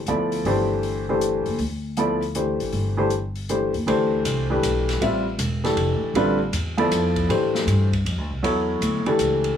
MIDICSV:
0, 0, Header, 1, 5, 480
1, 0, Start_track
1, 0, Tempo, 380228
1, 566, Time_signature, 3, 2, 24, 8
1, 12084, End_track
2, 0, Start_track
2, 0, Title_t, "Grand piano"
2, 0, Program_c, 0, 0
2, 102, Note_on_c, 0, 53, 50
2, 102, Note_on_c, 0, 59, 48
2, 109, Note_on_c, 0, 64, 45
2, 112, Note_on_c, 0, 69, 46
2, 112, Note_on_c, 0, 74, 58
2, 580, Note_on_c, 0, 52, 62
2, 580, Note_on_c, 0, 57, 57
2, 583, Note_on_c, 0, 62, 58
2, 585, Note_on_c, 0, 67, 60
2, 593, Note_on_c, 0, 72, 68
2, 827, Note_off_c, 0, 53, 0
2, 827, Note_off_c, 0, 59, 0
2, 831, Note_off_c, 0, 64, 0
2, 832, Note_off_c, 0, 69, 0
2, 832, Note_off_c, 0, 74, 0
2, 1306, Note_off_c, 0, 52, 0
2, 1306, Note_off_c, 0, 57, 0
2, 1307, Note_off_c, 0, 62, 0
2, 1309, Note_off_c, 0, 67, 0
2, 1313, Note_off_c, 0, 72, 0
2, 1378, Note_on_c, 0, 52, 61
2, 1382, Note_on_c, 0, 57, 56
2, 1384, Note_on_c, 0, 62, 53
2, 1387, Note_on_c, 0, 72, 63
2, 1390, Note_on_c, 0, 67, 52
2, 1982, Note_off_c, 0, 52, 0
2, 1984, Note_off_c, 0, 57, 0
2, 1985, Note_off_c, 0, 62, 0
2, 1987, Note_off_c, 0, 72, 0
2, 1988, Note_off_c, 0, 67, 0
2, 2492, Note_on_c, 0, 53, 52
2, 2500, Note_on_c, 0, 59, 50
2, 2507, Note_on_c, 0, 64, 46
2, 2507, Note_on_c, 0, 69, 48
2, 2513, Note_on_c, 0, 74, 56
2, 2774, Note_off_c, 0, 53, 0
2, 2778, Note_off_c, 0, 59, 0
2, 2782, Note_off_c, 0, 64, 0
2, 2782, Note_off_c, 0, 69, 0
2, 2785, Note_off_c, 0, 74, 0
2, 2973, Note_on_c, 0, 52, 49
2, 2973, Note_on_c, 0, 57, 44
2, 2976, Note_on_c, 0, 62, 45
2, 2977, Note_on_c, 0, 67, 43
2, 2984, Note_on_c, 0, 72, 52
2, 3703, Note_off_c, 0, 52, 0
2, 3703, Note_off_c, 0, 57, 0
2, 3705, Note_off_c, 0, 62, 0
2, 3706, Note_off_c, 0, 67, 0
2, 3709, Note_off_c, 0, 72, 0
2, 3754, Note_on_c, 0, 52, 65
2, 3757, Note_on_c, 0, 57, 61
2, 3762, Note_on_c, 0, 62, 56
2, 3765, Note_on_c, 0, 67, 58
2, 3769, Note_on_c, 0, 72, 68
2, 3906, Note_off_c, 0, 52, 0
2, 3908, Note_off_c, 0, 57, 0
2, 3911, Note_off_c, 0, 62, 0
2, 3912, Note_off_c, 0, 67, 0
2, 3914, Note_off_c, 0, 72, 0
2, 4411, Note_on_c, 0, 57, 45
2, 4414, Note_on_c, 0, 52, 50
2, 4415, Note_on_c, 0, 62, 43
2, 4423, Note_on_c, 0, 67, 45
2, 4425, Note_on_c, 0, 72, 53
2, 4694, Note_off_c, 0, 57, 0
2, 4695, Note_off_c, 0, 52, 0
2, 4696, Note_off_c, 0, 62, 0
2, 4700, Note_off_c, 0, 67, 0
2, 4701, Note_off_c, 0, 72, 0
2, 4887, Note_on_c, 0, 52, 61
2, 4889, Note_on_c, 0, 57, 62
2, 4894, Note_on_c, 0, 67, 58
2, 4897, Note_on_c, 0, 62, 60
2, 4900, Note_on_c, 0, 72, 77
2, 5620, Note_off_c, 0, 52, 0
2, 5621, Note_off_c, 0, 57, 0
2, 5623, Note_off_c, 0, 67, 0
2, 5625, Note_off_c, 0, 62, 0
2, 5626, Note_off_c, 0, 72, 0
2, 5682, Note_on_c, 0, 52, 59
2, 5689, Note_on_c, 0, 57, 51
2, 5690, Note_on_c, 0, 62, 55
2, 5698, Note_on_c, 0, 67, 60
2, 5700, Note_on_c, 0, 71, 65
2, 6294, Note_off_c, 0, 52, 0
2, 6298, Note_off_c, 0, 57, 0
2, 6298, Note_off_c, 0, 62, 0
2, 6302, Note_off_c, 0, 67, 0
2, 6303, Note_off_c, 0, 71, 0
2, 6330, Note_on_c, 0, 55, 60
2, 6334, Note_on_c, 0, 60, 52
2, 6335, Note_on_c, 0, 65, 60
2, 6338, Note_on_c, 0, 71, 55
2, 6345, Note_on_c, 0, 76, 72
2, 6613, Note_off_c, 0, 55, 0
2, 6615, Note_off_c, 0, 60, 0
2, 6615, Note_off_c, 0, 65, 0
2, 6617, Note_off_c, 0, 71, 0
2, 6621, Note_off_c, 0, 76, 0
2, 7119, Note_on_c, 0, 57, 56
2, 7120, Note_on_c, 0, 52, 62
2, 7129, Note_on_c, 0, 62, 53
2, 7129, Note_on_c, 0, 67, 57
2, 7134, Note_on_c, 0, 69, 65
2, 7732, Note_off_c, 0, 52, 0
2, 7732, Note_off_c, 0, 57, 0
2, 7737, Note_off_c, 0, 62, 0
2, 7737, Note_off_c, 0, 67, 0
2, 7739, Note_off_c, 0, 69, 0
2, 7770, Note_on_c, 0, 50, 71
2, 7774, Note_on_c, 0, 60, 64
2, 7775, Note_on_c, 0, 55, 74
2, 7781, Note_on_c, 0, 65, 65
2, 7782, Note_on_c, 0, 71, 82
2, 8052, Note_off_c, 0, 50, 0
2, 8054, Note_off_c, 0, 60, 0
2, 8055, Note_off_c, 0, 55, 0
2, 8058, Note_off_c, 0, 65, 0
2, 8059, Note_off_c, 0, 71, 0
2, 8553, Note_on_c, 0, 53, 64
2, 8562, Note_on_c, 0, 59, 66
2, 8569, Note_on_c, 0, 64, 58
2, 8569, Note_on_c, 0, 69, 63
2, 8577, Note_on_c, 0, 74, 70
2, 9169, Note_off_c, 0, 53, 0
2, 9173, Note_off_c, 0, 59, 0
2, 9176, Note_off_c, 0, 64, 0
2, 9177, Note_off_c, 0, 69, 0
2, 9180, Note_off_c, 0, 74, 0
2, 9205, Note_on_c, 0, 52, 60
2, 9211, Note_on_c, 0, 62, 52
2, 9214, Note_on_c, 0, 57, 53
2, 9217, Note_on_c, 0, 67, 55
2, 9218, Note_on_c, 0, 72, 69
2, 9937, Note_off_c, 0, 52, 0
2, 9941, Note_off_c, 0, 62, 0
2, 9942, Note_off_c, 0, 57, 0
2, 9944, Note_off_c, 0, 67, 0
2, 9944, Note_off_c, 0, 72, 0
2, 10638, Note_on_c, 0, 54, 61
2, 10644, Note_on_c, 0, 59, 56
2, 10648, Note_on_c, 0, 64, 53
2, 10653, Note_on_c, 0, 69, 52
2, 10654, Note_on_c, 0, 73, 69
2, 11373, Note_off_c, 0, 54, 0
2, 11376, Note_off_c, 0, 59, 0
2, 11379, Note_off_c, 0, 64, 0
2, 11381, Note_off_c, 0, 69, 0
2, 11381, Note_off_c, 0, 73, 0
2, 11444, Note_on_c, 0, 52, 62
2, 11446, Note_on_c, 0, 62, 55
2, 11448, Note_on_c, 0, 57, 59
2, 11450, Note_on_c, 0, 67, 55
2, 11460, Note_on_c, 0, 69, 65
2, 12053, Note_off_c, 0, 52, 0
2, 12053, Note_off_c, 0, 62, 0
2, 12055, Note_off_c, 0, 57, 0
2, 12056, Note_off_c, 0, 67, 0
2, 12060, Note_off_c, 0, 69, 0
2, 12084, End_track
3, 0, Start_track
3, 0, Title_t, "Upright bass"
3, 0, Program_c, 1, 32
3, 83, Note_on_c, 1, 38, 66
3, 531, Note_off_c, 1, 38, 0
3, 566, Note_on_c, 1, 31, 78
3, 1792, Note_off_c, 1, 31, 0
3, 1847, Note_on_c, 1, 30, 63
3, 1998, Note_off_c, 1, 30, 0
3, 2007, Note_on_c, 1, 38, 74
3, 3233, Note_off_c, 1, 38, 0
3, 3292, Note_on_c, 1, 33, 59
3, 3441, Note_off_c, 1, 33, 0
3, 3447, Note_on_c, 1, 31, 82
3, 4673, Note_off_c, 1, 31, 0
3, 4718, Note_on_c, 1, 39, 57
3, 4870, Note_off_c, 1, 39, 0
3, 4877, Note_on_c, 1, 38, 79
3, 5348, Note_off_c, 1, 38, 0
3, 5366, Note_on_c, 1, 36, 84
3, 5832, Note_off_c, 1, 36, 0
3, 5844, Note_on_c, 1, 35, 81
3, 6311, Note_off_c, 1, 35, 0
3, 6327, Note_on_c, 1, 33, 75
3, 6790, Note_off_c, 1, 33, 0
3, 6797, Note_on_c, 1, 28, 94
3, 7267, Note_off_c, 1, 28, 0
3, 7279, Note_on_c, 1, 29, 85
3, 7576, Note_off_c, 1, 29, 0
3, 7751, Note_on_c, 1, 33, 78
3, 8224, Note_off_c, 1, 33, 0
3, 8238, Note_on_c, 1, 40, 96
3, 8707, Note_off_c, 1, 40, 0
3, 8720, Note_on_c, 1, 41, 87
3, 9188, Note_off_c, 1, 41, 0
3, 9198, Note_on_c, 1, 45, 82
3, 9667, Note_off_c, 1, 45, 0
3, 9679, Note_on_c, 1, 43, 89
3, 10147, Note_off_c, 1, 43, 0
3, 10168, Note_on_c, 1, 41, 83
3, 10324, Note_off_c, 1, 41, 0
3, 10324, Note_on_c, 1, 38, 55
3, 10477, Note_off_c, 1, 38, 0
3, 10485, Note_on_c, 1, 36, 60
3, 10634, Note_off_c, 1, 36, 0
3, 10643, Note_on_c, 1, 40, 74
3, 11109, Note_off_c, 1, 40, 0
3, 11121, Note_on_c, 1, 38, 88
3, 11416, Note_off_c, 1, 38, 0
3, 11605, Note_on_c, 1, 37, 86
3, 12069, Note_off_c, 1, 37, 0
3, 12084, End_track
4, 0, Start_track
4, 0, Title_t, "Muted upright bass strokes"
4, 7588, Note_on_c, 9, 29, 37
4, 7715, Note_off_c, 9, 29, 0
4, 11438, Note_on_c, 9, 29, 37
4, 11564, Note_off_c, 9, 29, 0
4, 12084, End_track
5, 0, Start_track
5, 0, Title_t, "Drums"
5, 82, Note_on_c, 9, 42, 45
5, 208, Note_off_c, 9, 42, 0
5, 402, Note_on_c, 9, 46, 36
5, 528, Note_off_c, 9, 46, 0
5, 570, Note_on_c, 9, 46, 39
5, 696, Note_off_c, 9, 46, 0
5, 1049, Note_on_c, 9, 46, 39
5, 1175, Note_off_c, 9, 46, 0
5, 1531, Note_on_c, 9, 42, 47
5, 1658, Note_off_c, 9, 42, 0
5, 1839, Note_on_c, 9, 46, 34
5, 1966, Note_off_c, 9, 46, 0
5, 2001, Note_on_c, 9, 46, 40
5, 2127, Note_off_c, 9, 46, 0
5, 2483, Note_on_c, 9, 42, 45
5, 2610, Note_off_c, 9, 42, 0
5, 2807, Note_on_c, 9, 46, 30
5, 2933, Note_off_c, 9, 46, 0
5, 2964, Note_on_c, 9, 42, 48
5, 3091, Note_off_c, 9, 42, 0
5, 3284, Note_on_c, 9, 46, 35
5, 3410, Note_off_c, 9, 46, 0
5, 3439, Note_on_c, 9, 46, 39
5, 3565, Note_off_c, 9, 46, 0
5, 3918, Note_on_c, 9, 42, 41
5, 4044, Note_off_c, 9, 42, 0
5, 4235, Note_on_c, 9, 46, 31
5, 4361, Note_off_c, 9, 46, 0
5, 4408, Note_on_c, 9, 42, 48
5, 4534, Note_off_c, 9, 42, 0
5, 4724, Note_on_c, 9, 46, 33
5, 4850, Note_off_c, 9, 46, 0
5, 4895, Note_on_c, 9, 51, 56
5, 5021, Note_off_c, 9, 51, 0
5, 5367, Note_on_c, 9, 44, 57
5, 5367, Note_on_c, 9, 51, 65
5, 5493, Note_off_c, 9, 44, 0
5, 5493, Note_off_c, 9, 51, 0
5, 5848, Note_on_c, 9, 44, 53
5, 5848, Note_on_c, 9, 51, 64
5, 5975, Note_off_c, 9, 44, 0
5, 5975, Note_off_c, 9, 51, 0
5, 6170, Note_on_c, 9, 51, 46
5, 6174, Note_on_c, 9, 38, 37
5, 6296, Note_off_c, 9, 51, 0
5, 6300, Note_off_c, 9, 38, 0
5, 6333, Note_on_c, 9, 51, 60
5, 6459, Note_off_c, 9, 51, 0
5, 6801, Note_on_c, 9, 44, 59
5, 6801, Note_on_c, 9, 51, 66
5, 6927, Note_off_c, 9, 44, 0
5, 6927, Note_off_c, 9, 51, 0
5, 7126, Note_on_c, 9, 51, 43
5, 7130, Note_on_c, 9, 38, 41
5, 7252, Note_off_c, 9, 51, 0
5, 7256, Note_off_c, 9, 38, 0
5, 7282, Note_on_c, 9, 51, 56
5, 7408, Note_off_c, 9, 51, 0
5, 7766, Note_on_c, 9, 51, 56
5, 7892, Note_off_c, 9, 51, 0
5, 8243, Note_on_c, 9, 44, 49
5, 8243, Note_on_c, 9, 51, 67
5, 8370, Note_off_c, 9, 44, 0
5, 8370, Note_off_c, 9, 51, 0
5, 8559, Note_on_c, 9, 51, 45
5, 8685, Note_off_c, 9, 51, 0
5, 8730, Note_on_c, 9, 44, 58
5, 8730, Note_on_c, 9, 51, 63
5, 8856, Note_off_c, 9, 44, 0
5, 8856, Note_off_c, 9, 51, 0
5, 9040, Note_on_c, 9, 36, 62
5, 9041, Note_on_c, 9, 51, 46
5, 9166, Note_off_c, 9, 36, 0
5, 9167, Note_off_c, 9, 51, 0
5, 9215, Note_on_c, 9, 51, 60
5, 9341, Note_off_c, 9, 51, 0
5, 9529, Note_on_c, 9, 38, 59
5, 9656, Note_off_c, 9, 38, 0
5, 9691, Note_on_c, 9, 44, 53
5, 9691, Note_on_c, 9, 51, 61
5, 9817, Note_off_c, 9, 44, 0
5, 9817, Note_off_c, 9, 51, 0
5, 10004, Note_on_c, 9, 36, 58
5, 10014, Note_on_c, 9, 51, 47
5, 10131, Note_off_c, 9, 36, 0
5, 10141, Note_off_c, 9, 51, 0
5, 10178, Note_on_c, 9, 51, 64
5, 10304, Note_off_c, 9, 51, 0
5, 10657, Note_on_c, 9, 51, 64
5, 10784, Note_off_c, 9, 51, 0
5, 11132, Note_on_c, 9, 44, 47
5, 11132, Note_on_c, 9, 51, 62
5, 11259, Note_off_c, 9, 44, 0
5, 11259, Note_off_c, 9, 51, 0
5, 11440, Note_on_c, 9, 51, 42
5, 11566, Note_off_c, 9, 51, 0
5, 11600, Note_on_c, 9, 44, 60
5, 11600, Note_on_c, 9, 51, 62
5, 11727, Note_off_c, 9, 44, 0
5, 11727, Note_off_c, 9, 51, 0
5, 11919, Note_on_c, 9, 51, 46
5, 12045, Note_off_c, 9, 51, 0
5, 12084, End_track
0, 0, End_of_file